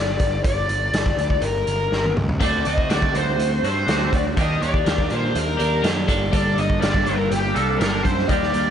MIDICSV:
0, 0, Header, 1, 5, 480
1, 0, Start_track
1, 0, Tempo, 490998
1, 435, Time_signature, 4, 2, 24, 8
1, 8508, End_track
2, 0, Start_track
2, 0, Title_t, "Lead electric guitar"
2, 0, Program_c, 0, 29
2, 0, Note_on_c, 0, 74, 98
2, 390, Note_off_c, 0, 74, 0
2, 425, Note_on_c, 0, 74, 90
2, 1388, Note_on_c, 0, 70, 72
2, 1417, Note_off_c, 0, 74, 0
2, 2070, Note_off_c, 0, 70, 0
2, 2365, Note_on_c, 0, 74, 85
2, 2582, Note_off_c, 0, 74, 0
2, 2604, Note_on_c, 0, 75, 88
2, 2839, Note_off_c, 0, 75, 0
2, 2843, Note_on_c, 0, 74, 85
2, 3084, Note_off_c, 0, 74, 0
2, 3096, Note_on_c, 0, 72, 89
2, 3531, Note_off_c, 0, 72, 0
2, 3588, Note_on_c, 0, 72, 91
2, 4056, Note_off_c, 0, 72, 0
2, 4060, Note_on_c, 0, 74, 89
2, 4121, Note_off_c, 0, 74, 0
2, 4310, Note_on_c, 0, 75, 90
2, 4521, Note_off_c, 0, 75, 0
2, 4525, Note_on_c, 0, 74, 92
2, 4966, Note_off_c, 0, 74, 0
2, 5018, Note_on_c, 0, 72, 77
2, 5253, Note_off_c, 0, 72, 0
2, 5268, Note_on_c, 0, 70, 70
2, 5699, Note_off_c, 0, 70, 0
2, 6191, Note_on_c, 0, 74, 91
2, 6441, Note_off_c, 0, 74, 0
2, 6446, Note_on_c, 0, 75, 94
2, 6649, Note_off_c, 0, 75, 0
2, 6653, Note_on_c, 0, 74, 94
2, 6899, Note_on_c, 0, 70, 90
2, 6912, Note_off_c, 0, 74, 0
2, 7135, Note_off_c, 0, 70, 0
2, 7139, Note_on_c, 0, 67, 87
2, 7382, Note_off_c, 0, 67, 0
2, 7386, Note_on_c, 0, 69, 83
2, 7612, Note_off_c, 0, 69, 0
2, 7615, Note_on_c, 0, 70, 90
2, 7849, Note_off_c, 0, 70, 0
2, 7852, Note_on_c, 0, 72, 86
2, 8098, Note_off_c, 0, 72, 0
2, 8102, Note_on_c, 0, 74, 82
2, 8508, Note_off_c, 0, 74, 0
2, 8508, End_track
3, 0, Start_track
3, 0, Title_t, "Clean electric guitar"
3, 0, Program_c, 1, 27
3, 2345, Note_on_c, 1, 50, 88
3, 2356, Note_on_c, 1, 57, 92
3, 2367, Note_on_c, 1, 60, 94
3, 2373, Note_on_c, 1, 66, 92
3, 2575, Note_off_c, 1, 66, 0
3, 2587, Note_on_c, 1, 66, 64
3, 2593, Note_off_c, 1, 60, 0
3, 2604, Note_off_c, 1, 57, 0
3, 2605, Note_on_c, 1, 60, 55
3, 2615, Note_on_c, 1, 57, 59
3, 2813, Note_off_c, 1, 50, 0
3, 2819, Note_off_c, 1, 57, 0
3, 2824, Note_on_c, 1, 50, 84
3, 2830, Note_off_c, 1, 60, 0
3, 2831, Note_on_c, 1, 57, 73
3, 2837, Note_off_c, 1, 66, 0
3, 2842, Note_on_c, 1, 60, 84
3, 2849, Note_on_c, 1, 66, 98
3, 3051, Note_off_c, 1, 66, 0
3, 3062, Note_on_c, 1, 66, 66
3, 3068, Note_off_c, 1, 60, 0
3, 3080, Note_off_c, 1, 57, 0
3, 3080, Note_on_c, 1, 60, 64
3, 3092, Note_on_c, 1, 57, 53
3, 3308, Note_off_c, 1, 50, 0
3, 3549, Note_off_c, 1, 66, 0
3, 3558, Note_off_c, 1, 60, 0
3, 3561, Note_on_c, 1, 66, 66
3, 3570, Note_on_c, 1, 60, 58
3, 3571, Note_off_c, 1, 57, 0
3, 3583, Note_on_c, 1, 57, 58
3, 3777, Note_off_c, 1, 57, 0
3, 3778, Note_on_c, 1, 50, 61
3, 3784, Note_off_c, 1, 60, 0
3, 3789, Note_on_c, 1, 57, 65
3, 3793, Note_off_c, 1, 66, 0
3, 3796, Note_on_c, 1, 60, 74
3, 3804, Note_on_c, 1, 66, 69
3, 4251, Note_off_c, 1, 50, 0
3, 4256, Note_off_c, 1, 57, 0
3, 4260, Note_off_c, 1, 60, 0
3, 4264, Note_off_c, 1, 66, 0
3, 4269, Note_on_c, 1, 51, 85
3, 4281, Note_on_c, 1, 58, 82
3, 4288, Note_on_c, 1, 62, 95
3, 4291, Note_on_c, 1, 67, 97
3, 4500, Note_off_c, 1, 67, 0
3, 4504, Note_on_c, 1, 67, 71
3, 4508, Note_off_c, 1, 62, 0
3, 4512, Note_on_c, 1, 62, 61
3, 4525, Note_off_c, 1, 58, 0
3, 4528, Note_on_c, 1, 58, 54
3, 4725, Note_off_c, 1, 51, 0
3, 4736, Note_on_c, 1, 51, 77
3, 4748, Note_off_c, 1, 58, 0
3, 4752, Note_on_c, 1, 58, 94
3, 4757, Note_off_c, 1, 62, 0
3, 4761, Note_on_c, 1, 62, 90
3, 4764, Note_off_c, 1, 67, 0
3, 4768, Note_on_c, 1, 67, 91
3, 4978, Note_off_c, 1, 67, 0
3, 4982, Note_on_c, 1, 67, 73
3, 4993, Note_off_c, 1, 62, 0
3, 4997, Note_on_c, 1, 62, 61
3, 5003, Note_off_c, 1, 58, 0
3, 5007, Note_on_c, 1, 58, 53
3, 5225, Note_off_c, 1, 51, 0
3, 5442, Note_off_c, 1, 67, 0
3, 5446, Note_on_c, 1, 67, 66
3, 5457, Note_off_c, 1, 62, 0
3, 5461, Note_on_c, 1, 62, 65
3, 5464, Note_off_c, 1, 58, 0
3, 5467, Note_on_c, 1, 58, 56
3, 5684, Note_on_c, 1, 51, 64
3, 5686, Note_off_c, 1, 58, 0
3, 5689, Note_on_c, 1, 58, 72
3, 5696, Note_off_c, 1, 62, 0
3, 5700, Note_on_c, 1, 62, 73
3, 5702, Note_off_c, 1, 67, 0
3, 5706, Note_on_c, 1, 67, 77
3, 5925, Note_off_c, 1, 51, 0
3, 5932, Note_off_c, 1, 67, 0
3, 5936, Note_off_c, 1, 62, 0
3, 5936, Note_on_c, 1, 69, 83
3, 5940, Note_on_c, 1, 62, 85
3, 5942, Note_off_c, 1, 58, 0
3, 5946, Note_on_c, 1, 58, 76
3, 5950, Note_on_c, 1, 55, 78
3, 5954, Note_on_c, 1, 50, 72
3, 5958, Note_on_c, 1, 43, 62
3, 6150, Note_off_c, 1, 43, 0
3, 6161, Note_off_c, 1, 50, 0
3, 6162, Note_on_c, 1, 43, 83
3, 6173, Note_off_c, 1, 55, 0
3, 6173, Note_on_c, 1, 50, 91
3, 6177, Note_on_c, 1, 55, 104
3, 6178, Note_off_c, 1, 58, 0
3, 6179, Note_off_c, 1, 69, 0
3, 6180, Note_off_c, 1, 62, 0
3, 6182, Note_on_c, 1, 58, 94
3, 6184, Note_on_c, 1, 62, 99
3, 6191, Note_on_c, 1, 69, 91
3, 6394, Note_off_c, 1, 69, 0
3, 6405, Note_on_c, 1, 69, 68
3, 6412, Note_off_c, 1, 62, 0
3, 6416, Note_off_c, 1, 58, 0
3, 6416, Note_on_c, 1, 62, 64
3, 6420, Note_on_c, 1, 58, 58
3, 6430, Note_off_c, 1, 55, 0
3, 6434, Note_on_c, 1, 55, 55
3, 6636, Note_off_c, 1, 43, 0
3, 6643, Note_off_c, 1, 50, 0
3, 6648, Note_on_c, 1, 43, 82
3, 6654, Note_on_c, 1, 50, 84
3, 6656, Note_off_c, 1, 55, 0
3, 6660, Note_on_c, 1, 55, 96
3, 6661, Note_off_c, 1, 58, 0
3, 6661, Note_off_c, 1, 69, 0
3, 6665, Note_on_c, 1, 58, 92
3, 6666, Note_off_c, 1, 62, 0
3, 6670, Note_on_c, 1, 62, 91
3, 6673, Note_on_c, 1, 69, 96
3, 6876, Note_off_c, 1, 69, 0
3, 6888, Note_on_c, 1, 69, 66
3, 6896, Note_off_c, 1, 62, 0
3, 6899, Note_on_c, 1, 62, 65
3, 6903, Note_off_c, 1, 58, 0
3, 6907, Note_on_c, 1, 58, 57
3, 6909, Note_off_c, 1, 55, 0
3, 6913, Note_on_c, 1, 55, 54
3, 7143, Note_off_c, 1, 43, 0
3, 7146, Note_off_c, 1, 50, 0
3, 7362, Note_off_c, 1, 69, 0
3, 7374, Note_on_c, 1, 69, 66
3, 7377, Note_off_c, 1, 58, 0
3, 7379, Note_off_c, 1, 62, 0
3, 7383, Note_on_c, 1, 62, 64
3, 7386, Note_off_c, 1, 55, 0
3, 7388, Note_on_c, 1, 58, 56
3, 7397, Note_on_c, 1, 55, 56
3, 7606, Note_off_c, 1, 55, 0
3, 7614, Note_off_c, 1, 58, 0
3, 7617, Note_on_c, 1, 55, 70
3, 7626, Note_on_c, 1, 58, 61
3, 7628, Note_off_c, 1, 69, 0
3, 7629, Note_off_c, 1, 62, 0
3, 7633, Note_on_c, 1, 62, 75
3, 7640, Note_on_c, 1, 69, 70
3, 8094, Note_off_c, 1, 55, 0
3, 8096, Note_on_c, 1, 51, 79
3, 8098, Note_off_c, 1, 58, 0
3, 8105, Note_off_c, 1, 69, 0
3, 8109, Note_on_c, 1, 55, 90
3, 8113, Note_on_c, 1, 58, 89
3, 8114, Note_off_c, 1, 62, 0
3, 8118, Note_on_c, 1, 62, 97
3, 8125, Note_on_c, 1, 67, 105
3, 8325, Note_off_c, 1, 67, 0
3, 8337, Note_on_c, 1, 67, 72
3, 8345, Note_off_c, 1, 62, 0
3, 8355, Note_off_c, 1, 58, 0
3, 8357, Note_on_c, 1, 62, 61
3, 8367, Note_on_c, 1, 58, 59
3, 8508, Note_off_c, 1, 51, 0
3, 8508, Note_off_c, 1, 55, 0
3, 8508, Note_off_c, 1, 58, 0
3, 8508, Note_off_c, 1, 62, 0
3, 8508, Note_off_c, 1, 67, 0
3, 8508, End_track
4, 0, Start_track
4, 0, Title_t, "Picked electric bass"
4, 0, Program_c, 2, 34
4, 0, Note_on_c, 2, 31, 83
4, 156, Note_off_c, 2, 31, 0
4, 196, Note_on_c, 2, 31, 76
4, 394, Note_off_c, 2, 31, 0
4, 437, Note_on_c, 2, 31, 83
4, 635, Note_off_c, 2, 31, 0
4, 669, Note_on_c, 2, 31, 81
4, 870, Note_off_c, 2, 31, 0
4, 903, Note_on_c, 2, 31, 74
4, 1106, Note_off_c, 2, 31, 0
4, 1147, Note_on_c, 2, 38, 82
4, 1348, Note_off_c, 2, 38, 0
4, 1389, Note_on_c, 2, 31, 82
4, 1590, Note_off_c, 2, 31, 0
4, 1630, Note_on_c, 2, 31, 80
4, 1830, Note_off_c, 2, 31, 0
4, 1868, Note_on_c, 2, 31, 78
4, 2069, Note_off_c, 2, 31, 0
4, 2107, Note_on_c, 2, 37, 79
4, 2308, Note_off_c, 2, 37, 0
4, 2357, Note_on_c, 2, 38, 86
4, 2554, Note_off_c, 2, 38, 0
4, 2605, Note_on_c, 2, 38, 83
4, 2798, Note_off_c, 2, 38, 0
4, 2841, Note_on_c, 2, 38, 77
4, 3036, Note_off_c, 2, 38, 0
4, 3075, Note_on_c, 2, 38, 82
4, 3273, Note_off_c, 2, 38, 0
4, 3306, Note_on_c, 2, 38, 79
4, 3507, Note_off_c, 2, 38, 0
4, 3549, Note_on_c, 2, 43, 74
4, 3750, Note_off_c, 2, 43, 0
4, 3787, Note_on_c, 2, 38, 77
4, 3989, Note_off_c, 2, 38, 0
4, 4037, Note_on_c, 2, 38, 76
4, 4234, Note_off_c, 2, 38, 0
4, 4278, Note_on_c, 2, 39, 90
4, 4475, Note_off_c, 2, 39, 0
4, 4513, Note_on_c, 2, 39, 77
4, 4712, Note_off_c, 2, 39, 0
4, 4752, Note_on_c, 2, 39, 80
4, 4952, Note_off_c, 2, 39, 0
4, 4998, Note_on_c, 2, 46, 85
4, 5195, Note_off_c, 2, 46, 0
4, 5234, Note_on_c, 2, 39, 86
4, 5434, Note_off_c, 2, 39, 0
4, 5475, Note_on_c, 2, 39, 75
4, 5674, Note_off_c, 2, 39, 0
4, 5704, Note_on_c, 2, 42, 77
4, 5908, Note_off_c, 2, 42, 0
4, 5946, Note_on_c, 2, 31, 74
4, 6149, Note_off_c, 2, 31, 0
4, 6196, Note_on_c, 2, 31, 81
4, 6395, Note_off_c, 2, 31, 0
4, 6428, Note_on_c, 2, 31, 82
4, 6630, Note_off_c, 2, 31, 0
4, 6667, Note_on_c, 2, 31, 82
4, 6870, Note_off_c, 2, 31, 0
4, 6904, Note_on_c, 2, 31, 84
4, 7109, Note_off_c, 2, 31, 0
4, 7147, Note_on_c, 2, 31, 84
4, 7350, Note_off_c, 2, 31, 0
4, 7389, Note_on_c, 2, 36, 74
4, 7592, Note_off_c, 2, 36, 0
4, 7629, Note_on_c, 2, 31, 80
4, 7832, Note_off_c, 2, 31, 0
4, 7875, Note_on_c, 2, 42, 78
4, 8076, Note_off_c, 2, 42, 0
4, 8113, Note_on_c, 2, 39, 87
4, 8315, Note_off_c, 2, 39, 0
4, 8346, Note_on_c, 2, 39, 77
4, 8508, Note_off_c, 2, 39, 0
4, 8508, End_track
5, 0, Start_track
5, 0, Title_t, "Drums"
5, 191, Note_on_c, 9, 42, 62
5, 195, Note_on_c, 9, 36, 84
5, 288, Note_off_c, 9, 42, 0
5, 293, Note_off_c, 9, 36, 0
5, 434, Note_on_c, 9, 42, 73
5, 435, Note_on_c, 9, 36, 94
5, 532, Note_off_c, 9, 42, 0
5, 533, Note_off_c, 9, 36, 0
5, 676, Note_on_c, 9, 42, 55
5, 773, Note_off_c, 9, 42, 0
5, 915, Note_on_c, 9, 42, 87
5, 925, Note_on_c, 9, 38, 106
5, 1013, Note_off_c, 9, 42, 0
5, 1023, Note_off_c, 9, 38, 0
5, 1035, Note_on_c, 9, 36, 83
5, 1133, Note_off_c, 9, 36, 0
5, 1159, Note_on_c, 9, 42, 58
5, 1257, Note_off_c, 9, 42, 0
5, 1273, Note_on_c, 9, 36, 75
5, 1371, Note_off_c, 9, 36, 0
5, 1386, Note_on_c, 9, 42, 73
5, 1483, Note_off_c, 9, 42, 0
5, 1634, Note_on_c, 9, 42, 57
5, 1732, Note_off_c, 9, 42, 0
5, 1879, Note_on_c, 9, 38, 53
5, 1977, Note_off_c, 9, 38, 0
5, 1998, Note_on_c, 9, 48, 50
5, 2096, Note_off_c, 9, 48, 0
5, 2120, Note_on_c, 9, 45, 78
5, 2218, Note_off_c, 9, 45, 0
5, 2239, Note_on_c, 9, 43, 73
5, 2337, Note_off_c, 9, 43, 0
5, 2352, Note_on_c, 9, 36, 92
5, 2355, Note_on_c, 9, 42, 76
5, 2355, Note_on_c, 9, 55, 67
5, 2449, Note_off_c, 9, 36, 0
5, 2453, Note_off_c, 9, 42, 0
5, 2453, Note_off_c, 9, 55, 0
5, 2592, Note_on_c, 9, 42, 53
5, 2690, Note_off_c, 9, 42, 0
5, 2715, Note_on_c, 9, 36, 78
5, 2813, Note_off_c, 9, 36, 0
5, 2836, Note_on_c, 9, 42, 76
5, 2846, Note_on_c, 9, 38, 103
5, 2933, Note_off_c, 9, 42, 0
5, 2944, Note_off_c, 9, 38, 0
5, 2955, Note_on_c, 9, 36, 83
5, 3053, Note_off_c, 9, 36, 0
5, 3078, Note_on_c, 9, 42, 57
5, 3176, Note_off_c, 9, 42, 0
5, 3319, Note_on_c, 9, 42, 70
5, 3417, Note_off_c, 9, 42, 0
5, 3562, Note_on_c, 9, 42, 54
5, 3659, Note_off_c, 9, 42, 0
5, 3793, Note_on_c, 9, 42, 67
5, 3804, Note_on_c, 9, 38, 99
5, 3891, Note_off_c, 9, 42, 0
5, 3901, Note_off_c, 9, 38, 0
5, 4035, Note_on_c, 9, 36, 85
5, 4042, Note_on_c, 9, 42, 59
5, 4133, Note_off_c, 9, 36, 0
5, 4140, Note_off_c, 9, 42, 0
5, 4273, Note_on_c, 9, 42, 70
5, 4274, Note_on_c, 9, 36, 98
5, 4371, Note_off_c, 9, 42, 0
5, 4372, Note_off_c, 9, 36, 0
5, 4521, Note_on_c, 9, 42, 51
5, 4618, Note_off_c, 9, 42, 0
5, 4633, Note_on_c, 9, 36, 79
5, 4731, Note_off_c, 9, 36, 0
5, 4755, Note_on_c, 9, 42, 80
5, 4765, Note_on_c, 9, 38, 102
5, 4852, Note_off_c, 9, 42, 0
5, 4863, Note_off_c, 9, 38, 0
5, 4871, Note_on_c, 9, 36, 79
5, 4968, Note_off_c, 9, 36, 0
5, 4988, Note_on_c, 9, 42, 57
5, 5085, Note_off_c, 9, 42, 0
5, 5234, Note_on_c, 9, 42, 74
5, 5332, Note_off_c, 9, 42, 0
5, 5471, Note_on_c, 9, 42, 57
5, 5569, Note_off_c, 9, 42, 0
5, 5709, Note_on_c, 9, 42, 85
5, 5720, Note_on_c, 9, 38, 101
5, 5807, Note_off_c, 9, 42, 0
5, 5818, Note_off_c, 9, 38, 0
5, 5949, Note_on_c, 9, 36, 84
5, 5951, Note_on_c, 9, 42, 65
5, 6047, Note_off_c, 9, 36, 0
5, 6049, Note_off_c, 9, 42, 0
5, 6189, Note_on_c, 9, 42, 81
5, 6190, Note_on_c, 9, 36, 94
5, 6287, Note_off_c, 9, 42, 0
5, 6288, Note_off_c, 9, 36, 0
5, 6432, Note_on_c, 9, 42, 52
5, 6530, Note_off_c, 9, 42, 0
5, 6548, Note_on_c, 9, 36, 78
5, 6646, Note_off_c, 9, 36, 0
5, 6671, Note_on_c, 9, 42, 80
5, 6682, Note_on_c, 9, 38, 105
5, 6769, Note_off_c, 9, 42, 0
5, 6779, Note_off_c, 9, 38, 0
5, 6789, Note_on_c, 9, 36, 82
5, 6886, Note_off_c, 9, 36, 0
5, 6907, Note_on_c, 9, 42, 57
5, 7005, Note_off_c, 9, 42, 0
5, 7152, Note_on_c, 9, 42, 76
5, 7250, Note_off_c, 9, 42, 0
5, 7389, Note_on_c, 9, 42, 53
5, 7486, Note_off_c, 9, 42, 0
5, 7633, Note_on_c, 9, 42, 77
5, 7644, Note_on_c, 9, 38, 102
5, 7731, Note_off_c, 9, 42, 0
5, 7741, Note_off_c, 9, 38, 0
5, 7870, Note_on_c, 9, 36, 81
5, 7872, Note_on_c, 9, 42, 59
5, 7968, Note_off_c, 9, 36, 0
5, 7969, Note_off_c, 9, 42, 0
5, 8000, Note_on_c, 9, 38, 32
5, 8098, Note_off_c, 9, 38, 0
5, 8104, Note_on_c, 9, 42, 68
5, 8108, Note_on_c, 9, 36, 99
5, 8202, Note_off_c, 9, 42, 0
5, 8205, Note_off_c, 9, 36, 0
5, 8237, Note_on_c, 9, 38, 33
5, 8335, Note_off_c, 9, 38, 0
5, 8346, Note_on_c, 9, 42, 52
5, 8444, Note_off_c, 9, 42, 0
5, 8508, End_track
0, 0, End_of_file